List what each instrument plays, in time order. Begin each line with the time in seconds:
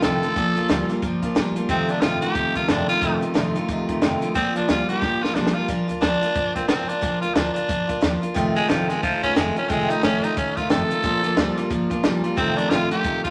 0.02 upright bass C2, steel-string acoustic guitar F2 C3 D#3 A3 D#4 F4, clean electric guitar F2 D3, tenor saxophone A4, snare, closed hi-hat
0.23 clean electric guitar F2 D3, steel-string acoustic guitar D#3 A3 D#4 F4, closed hi-hat
0.36 upright bass A#1, steel-string acoustic guitar A#2 F3 A#3 D4 F4, clean electric guitar A#2 F3, kick, closed hi-hat
0.55 upright bass D2, clean electric guitar A#2 F3, steel-string acoustic guitar A#3 D4 F4, closed hi-hat
0.68 upright bass D2, steel-string acoustic guitar A#2 F3 A#3 D4 F4, clean electric guitar A#2 G3, snare, closed hi-hat
0.88 clean electric guitar A#2 G3, steel-string acoustic guitar A#3 D4 F4, muted upright bass stroke, snare, closed hi-hat
1.02 upright bass G1, clean electric guitar A#2 F3, steel-string acoustic guitar F3 A#3 D4 F4, kick, closed hi-hat
1.22 upright bass A#1, clean electric guitar A#2 F3, steel-string acoustic guitar A#3 D4 F4, kick, closed hi-hat
1.35 upright bass A#1, steel-string acoustic guitar A#2 F3 A#3 D4 F4, clean electric guitar A#2 G3, snare, closed hi-hat
1.56 clean electric guitar A#2 G3, steel-string acoustic guitar A#3 D4 F4, muted upright bass stroke, closed hi-hat
1.69 upright bass F1, clean electric guitar F2 C3, steel-string acoustic guitar F2 C3 D#3 A3 D#4 F4, tenor saxophone C4, kick, closed hi-hat
1.89 clean electric guitar F2 C3, steel-string acoustic guitar D#3 A3 D#4 F4, tenor saxophone D4, closed hi-hat
2.01 upright bass A1, steel-string acoustic guitar F2 C3 D#3 A3 D#4 F4, clean electric guitar F2 D3, tenor saxophone F4, snare, closed hi-hat
2.21 clean electric guitar F2 D3, steel-string acoustic guitar D#3 A3 D#4 F4, tenor saxophone G4, closed hi-hat
2.34 upright bass D#2, clean electric guitar F2 C3, steel-string acoustic guitar D#3 A3 D#4 F4, kick, closed hi-hat
2.54 upright bass F1, clean electric guitar F2 C3, steel-string acoustic guitar D#3 A3 D#4 F4, tenor saxophone F4, kick, closed hi-hat
2.68 upright bass F1, clean electric guitar F2 D3, steel-string acoustic guitar F2 C3 D#3 A3 D#4 F4, tenor saxophone D4, snare, closed hi-hat
2.87 clean electric guitar F2 D3, steel-string acoustic guitar D#3 A3 D#4 F4, tenor saxophone F4, muted upright bass stroke, closed hi-hat
3.01 upright bass F1, clean electric guitar F2 C3, steel-string acoustic guitar F2 C3 D#3 A3 D#4 F4, kick, closed hi-hat
3.21 clean electric guitar F2 C3, steel-string acoustic guitar D#3 A3 D#4 F4, closed hi-hat
3.34 upright bass A1, steel-string acoustic guitar F2 C3 D#3 A3 D#4 F4, clean electric guitar F2 D3, snare, closed hi-hat
3.54 clean electric guitar F2 D3, steel-string acoustic guitar D#3 A3 D#4 F4, closed hi-hat
3.68 upright bass D#2, clean electric guitar F2 C3, steel-string acoustic guitar D#3 A3 D#4 F4, kick, closed hi-hat
3.88 upright bass F1, clean electric guitar F2 C3, steel-string acoustic guitar D#3 A3 D#4 F4, kick, closed hi-hat
4.01 upright bass F1, steel-string acoustic guitar F2 C3 D#3 A3 D#4 F4, clean electric guitar F2 D3, snare, closed hi-hat
4.21 clean electric guitar F2 D3, steel-string acoustic guitar D#3 A3 D#4 F4, muted upright bass stroke, closed hi-hat
4.34 upright bass A#1, clean electric guitar A#2 F3, steel-string acoustic guitar A#2 F3 A#3 D4 F4, tenor saxophone C4, kick, closed hi-hat
4.54 upright bass D2, clean electric guitar A#2 F3, steel-string acoustic guitar A#3 D4 F4, tenor saxophone D4, closed hi-hat
4.68 upright bass D2, steel-string acoustic guitar A#2 F3 A#3 D4 F4, clean electric guitar A#2 G3, tenor saxophone F4, snare, closed hi-hat
4.88 clean electric guitar A#2 G3, steel-string acoustic guitar A#3 D4 F4, tenor saxophone G4, muted upright bass stroke, closed hi-hat
5.01 upright bass G1, clean electric guitar A#2 F3, steel-string acoustic guitar F3 A#3 D4 F4, kick, snare
5.20 upright bass A#1, clean electric guitar A#2 F3, steel-string acoustic guitar A#3 D4 F4, tenor saxophone F4
5.24 snare
5.34 upright bass A#1, steel-string acoustic guitar A#2 F3 A#3 D4 F4, clean electric guitar A#2 G3, tenor saxophone D4, snare
5.47 snare
5.54 clean electric guitar A#2 G3, steel-string acoustic guitar A#3 D4 F4, tenor saxophone F4, muted upright bass stroke
5.68 upright bass A#1, steel-string acoustic guitar A#2 F3 A#3 D4 F4, kick, closed hi-hat
5.88 upright bass D2, steel-string acoustic guitar A#3 D4 F4, closed hi-hat
6.01 upright bass D2, steel-string acoustic guitar A#2 F3 A#3 D4 F4, tenor saxophone D4, snare, closed hi-hat
6.21 steel-string acoustic guitar A#3 D4 F4, muted upright bass stroke, snare, closed hi-hat
6.34 upright bass G1, steel-string acoustic guitar F3 A#3 D4 F4, kick, closed hi-hat
6.55 upright bass A#1, steel-string acoustic guitar A#3 D4 F4, tenor saxophone C4, kick, closed hi-hat
6.68 upright bass A#1, steel-string acoustic guitar A#2 F3 A#3 D4 F4, tenor saxophone C4, snare, closed hi-hat
6.88 steel-string acoustic guitar A#3 D4 F4, tenor saxophone D4, muted upright bass stroke, closed hi-hat
7.01 upright bass A#1, steel-string acoustic guitar A#2 F3 A#3 D4 F4, kick, closed hi-hat
7.21 upright bass D2, steel-string acoustic guitar A#3 D4 F4, tenor saxophone F4, closed hi-hat
7.34 upright bass D2, steel-string acoustic guitar A#2 F3 A#3 D4 F4, tenor saxophone D4, snare, closed hi-hat
7.54 steel-string acoustic guitar A#3 D4 F4, tenor saxophone D4, muted upright bass stroke, closed hi-hat
7.68 upright bass G1, steel-string acoustic guitar F3 A#3 D4 F4, kick, closed hi-hat
7.87 upright bass A#1, steel-string acoustic guitar A#3 D4 F4, kick, closed hi-hat
8.01 upright bass D#2, steel-string acoustic guitar A#2 F3 A#3 D4 F4, snare, closed hi-hat
8.22 steel-string acoustic guitar A#3 D4 F4, muted upright bass stroke, closed hi-hat
8.34 upright bass F1, steel-string acoustic guitar F2 C3 D#3 A3 D#4 F4, kick, closed hi-hat
8.55 upright bass A1, steel-string acoustic guitar D#3 A3 D#4 F4, tenor saxophone G#3, closed hi-hat
8.68 upright bass A1, steel-string acoustic guitar F2 C3 D#3 A3 D#4 F4, tenor saxophone F3, snare, closed hi-hat
8.89 steel-string acoustic guitar D#3 A3 D#4 F4, tenor saxophone G#3, muted upright bass stroke, snare, closed hi-hat
9.03 upright bass D#2, steel-string acoustic guitar D#3 A3 D#4 F4, tenor saxophone F3, kick, closed hi-hat
9.23 upright bass F1, steel-string acoustic guitar D#3 A3 D#4 F4, tenor saxophone C#4, kick, closed hi-hat
9.36 upright bass F1, steel-string acoustic guitar F2 C3 D#3 A3 D#4 F4, tenor saxophone G#3, snare, closed hi-hat
9.55 steel-string acoustic guitar D#3 A3 D#4 F4, tenor saxophone C#4, muted upright bass stroke, closed hi-hat
9.69 upright bass F1, steel-string acoustic guitar F2 C3 D#3 A3 D#4 F4, tenor saxophone G#3, kick, closed hi-hat
9.89 upright bass A1, steel-string acoustic guitar D#3 A3 D#4 F4, tenor saxophone D#4, closed hi-hat
10.02 upright bass A1, steel-string acoustic guitar F2 C3 D#3 A3 D#4 F4, tenor saxophone C#4, snare, closed hi-hat
10.23 steel-string acoustic guitar D#3 A3 D#4 F4, tenor saxophone D#4, closed hi-hat
10.36 upright bass D#2, steel-string acoustic guitar D#3 A3 D#4 F4, tenor saxophone C#4, kick, closed hi-hat
10.57 upright bass F1, steel-string acoustic guitar D#3 A3 D#4 F4, tenor saxophone F4, kick, closed hi-hat
10.69 upright bass F1, steel-string acoustic guitar F2 C3 D#3 A3 D#4 F4, tenor saxophone A4, snare, closed hi-hat
10.89 steel-string acoustic guitar D#3 A3 D#4 F4, muted upright bass stroke, closed hi-hat
11.03 upright bass A#1, steel-string acoustic guitar A#2 F3 A#3 D4 F4, clean electric guitar A#2 F3, kick, closed hi-hat
11.23 upright bass D2, clean electric guitar A#2 F3, steel-string acoustic guitar A#3 D4 F4, closed hi-hat
11.36 upright bass D2, clean electric guitar A#2 G3, steel-string acoustic guitar A#2 F3 A#3 D4 F4, snare, closed hi-hat
11.56 clean electric guitar A#2 G3, steel-string acoustic guitar D4 F4, muted upright bass stroke, snare, closed hi-hat
11.60 steel-string acoustic guitar A#3
11.70 upright bass G1, clean electric guitar A#2 F3, steel-string acoustic guitar F3 A#3 D4 F4, kick, closed hi-hat
11.90 upright bass A#1, clean electric guitar A#2 F3, steel-string acoustic guitar A#3 D4 F4, kick, closed hi-hat
12.03 upright bass A#1, steel-string acoustic guitar A#2 F3 A#3 D4 F4, clean electric guitar A#2 G3, snare, closed hi-hat
12.24 clean electric guitar A#2 G3, steel-string acoustic guitar A#3 D4 F4, closed hi-hat
12.37 upright bass F1, steel-string acoustic guitar F2 C3 D#3 A3 D#4 F4, clean electric guitar F2 C3, tenor saxophone C4, kick, closed hi-hat
12.56 upright bass A1, clean electric guitar F2 C3, steel-string acoustic guitar D#3 A3 D#4 F4, tenor saxophone D4, closed hi-hat
12.70 upright bass A1, clean electric guitar F2 D3, steel-string acoustic guitar F2 C3 D#3 A3 D#4 F4, tenor saxophone F4, snare, closed hi-hat
12.91 clean electric guitar F2 D3, steel-string acoustic guitar D#3 A3 D#4 F4, tenor saxophone G4, closed hi-hat
13.03 upright bass D#2, clean electric guitar F2 C3, steel-string acoustic guitar D#3 A3 D#4 F4, kick, closed hi-hat
13.24 upright bass F1, clean electric guitar F2 C3, steel-string acoustic guitar D#3 A3 D#4 F4, tenor saxophone F4, kick, closed hi-hat